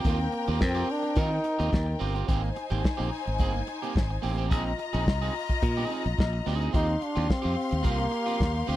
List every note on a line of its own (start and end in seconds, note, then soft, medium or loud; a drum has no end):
0.00 2.24 C4 medium
0.00 2.24 A#4 medium
0.00 2.24 G5 loud
0.05 0.26 D#2 loud
0.05 0.65 A#3 medium
0.05 0.25 C4 medium
0.05 0.20 F4 loud
0.05 0.18 G4 medium
0.05 kick loud
0.05 closed hi-hat medium
0.20 muted clean electric guitar stroke medium
0.20 closed hi-hat soft
0.32 muted clean electric guitar stroke soft
0.32 closed hi-hat medium
0.46 0.61 D#2 loud
0.46 0.59 C4 medium
0.46 0.60 F4 medium
0.46 0.60 G4 medium
0.46 closed hi-hat soft
0.60 0.82 F2 loud
0.60 0.93 C4 loud
0.60 muted clean electric guitar stroke soft
0.60 kick loud
0.60 snare loud
0.74 0.88 C4 medium
0.74 0.89 F4 medium
0.74 0.89 G4 loud
0.74 closed hi-hat soft
0.89 1.21 D4 loud
0.89 muted clean electric guitar stroke soft
0.89 open hi-hat medium
1.03 muted clean electric guitar stroke medium
1.03 closed hi-hat soft
1.15 1.38 D#3 loud
1.15 1.37 C4 medium
1.15 2.02 D#4 loud
1.15 1.31 F4 loud
1.15 1.31 A#4 loud
1.15 kick loud
1.15 closed hi-hat medium
1.31 muted clean electric guitar stroke soft
1.44 muted clean electric guitar stroke soft
1.44 closed hi-hat medium
1.59 1.70 D#2 loud
1.59 1.70 C4 medium
1.59 1.71 F4 medium
1.59 1.71 G4 medium
1.59 closed hi-hat medium
1.72 1.94 D#2 loud
1.72 muted clean electric guitar stroke soft
1.72 kick loud
1.72 snare loud
1.86 muted clean electric guitar stroke medium
1.99 2.22 G1 loud
1.99 2.15 C4 medium
1.99 2.14 F4 medium
1.99 2.14 G4 medium
1.99 open hi-hat medium
2.15 2.27 C4 medium
2.15 2.28 F4 medium
2.15 2.28 G4 medium
2.15 closed hi-hat medium
2.28 2.50 G#1 loud
2.28 2.49 A#3 loud
2.28 2.43 C4 loud
2.28 4.47 D#4 medium
2.28 2.42 G4 loud
2.28 4.47 C5 medium
2.28 4.47 G#5 loud
2.28 kick loud
2.28 closed hi-hat medium
2.43 muted clean electric guitar stroke soft
2.43 closed hi-hat soft
2.56 muted clean electric guitar stroke soft
2.56 closed hi-hat medium
2.70 2.81 G#1 loud
2.70 2.82 A#3 medium
2.70 2.83 C4 medium
2.70 2.83 G4 medium
2.70 closed hi-hat soft
2.85 kick loud
2.85 snare loud
2.97 3.09 A#1 medium
2.97 3.09 A#3 medium
2.97 3.10 C4 medium
2.97 3.10 G4 medium
3.10 muted clean electric guitar stroke soft
3.10 open hi-hat medium
3.26 3.40 G#1 medium
3.26 muted clean electric guitar stroke soft
3.26 closed hi-hat medium
3.39 3.61 G1 loud
3.39 3.60 A#3 medium
3.39 3.54 C4 medium
3.39 3.53 G#4 loud
3.39 kick loud
3.39 closed hi-hat medium
3.54 muted clean electric guitar stroke soft
3.54 closed hi-hat soft
3.67 muted clean electric guitar stroke soft
3.67 closed hi-hat medium
3.82 3.94 A#3 medium
3.82 3.95 C4 medium
3.82 3.95 G4 medium
3.82 closed hi-hat medium
3.96 4.17 G#1 loud
3.96 kick loud
3.96 snare loud
4.10 muted clean electric guitar stroke medium
4.10 closed hi-hat soft
4.22 4.52 A1 medium
4.22 4.38 A#3 medium
4.22 4.37 C4 loud
4.22 4.36 G4 loud
4.22 open hi-hat medium
4.38 4.50 A#3 medium
4.38 4.49 C4 medium
4.38 4.51 G4 medium
4.38 closed hi-hat medium
4.50 4.73 A#1 loud
4.50 4.71 C4 medium
4.50 4.65 D#4 medium
4.50 6.70 F4 medium
4.50 4.64 G#4 loud
4.50 6.70 D#5 medium
4.50 6.70 A#5 loud
4.50 kick loud
4.50 closed hi-hat medium
4.65 muted clean electric guitar stroke medium
4.78 muted clean electric guitar stroke soft
4.78 closed hi-hat medium
4.93 5.08 A#1 loud
4.93 5.06 C4 medium
4.93 5.06 D#4 medium
4.93 5.07 G#4 medium
4.93 closed hi-hat soft
5.07 5.28 C2 loud
5.07 kick loud
5.07 snare loud
5.22 5.34 C4 medium
5.22 5.34 D#4 medium
5.22 5.34 G#4 medium
5.35 muted clean electric guitar stroke soft
5.35 open hi-hat medium
5.49 muted clean electric guitar stroke medium
5.49 kick loud
5.49 closed hi-hat medium
5.62 5.84 A#2 loud
5.62 muted clean electric guitar stroke soft
5.62 kick loud
5.62 closed hi-hat medium
5.77 5.89 C4 medium
5.77 5.90 D#4 medium
5.77 5.91 G#4 medium
5.90 6.07 C4 medium
5.90 6.06 D#4 medium
5.90 6.05 G#4 medium
5.90 closed hi-hat medium
6.06 6.15 A#1 loud
6.06 muted clean electric guitar stroke medium
6.06 closed hi-hat medium
6.18 6.40 A#1 loud
6.18 muted clean electric guitar stroke soft
6.18 kick loud
6.18 snare loud
6.33 muted clean electric guitar stroke soft
6.46 6.68 D2 medium
6.46 6.61 C4 medium
6.46 6.60 D#4 loud
6.46 6.59 G#4 loud
6.46 snare soft
6.46 open hi-hat medium
6.60 6.71 C4 medium
6.60 6.73 D#4 medium
6.60 6.74 G#4 medium
6.60 closed hi-hat medium
6.73 6.95 D#2 loud
6.73 6.94 C4 medium
6.73 7.04 D#4 loud
6.73 6.88 F4 medium
6.73 8.76 G4 medium
6.73 6.87 G4 medium
6.73 8.76 F5 medium
6.73 8.76 C6 medium
6.73 kick loud
6.73 closed hi-hat medium
6.88 muted clean electric guitar stroke soft
6.88 closed hi-hat soft
7.01 7.32 D4 loud
7.01 muted clean electric guitar stroke soft
7.01 closed hi-hat medium
7.16 7.27 D#2 loud
7.16 7.27 C4 medium
7.16 7.27 F4 medium
7.16 7.28 G4 medium
7.16 closed hi-hat soft
7.28 7.86 C4 loud
7.28 muted clean electric guitar stroke soft
7.28 kick loud
7.28 snare loud
7.42 7.55 F2 medium
7.42 7.55 C4 medium
7.42 7.56 F4 medium
7.42 7.56 G4 medium
7.42 closed hi-hat soft
7.59 open hi-hat medium
7.71 7.85 D#2 loud
7.71 muted clean electric guitar stroke medium
7.71 closed hi-hat medium
7.83 8.06 C2 loud
7.83 8.71 A#3 loud
7.83 8.04 C4 medium
7.83 7.99 F4 loud
7.83 7.98 A#4 loud
7.83 kick loud
7.83 closed hi-hat loud
7.98 muted clean electric guitar stroke medium
7.98 closed hi-hat soft
8.11 muted clean electric guitar stroke medium
8.11 closed hi-hat medium
8.26 8.38 C4 medium
8.26 8.39 F4 medium
8.26 8.39 G4 medium
8.26 closed hi-hat medium
8.39 8.62 D#2 medium
8.39 muted clean electric guitar stroke soft
8.39 kick loud
8.39 snare loud
8.55 muted clean electric guitar stroke medium
8.67 8.76 D2 medium
8.67 8.76 C4 medium
8.67 8.76 F4 loud
8.67 8.76 G4 loud
8.67 open hi-hat medium